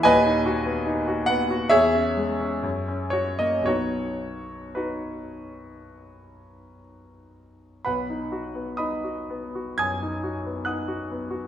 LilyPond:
\new Staff \with { instrumentName = "Grand piano" } { \time 4/4 \key b \major \tempo 4 = 63 << { <b' dis'' gis''>4. fis''8 <gis' cis'' e''>4. cis''16 dis''16 | <fis' cis''>4 <dis' fis' b'>2 r4 | <b' fis'' b''>4 <dis'' b'' dis'''>4 <gis'' dis''' gis'''>4 <fis'' dis''' fis'''>4 | } \\ { <dis,, dis,>16 dis'16 fis'16 b16 dis'16 fis'16 b16 fis'16 e,16 cis'16 gis16 cis'16 fis,16 cis'16 fis'16 ais16 | <b,, fis b dis'>1 | b,,16 dis'16 fis'16 b16 dis'16 fis'16 b16 fis'16 fis,16 dis'16 fis'16 b16 dis'16 fis'16 b16 fis'16 | } >> }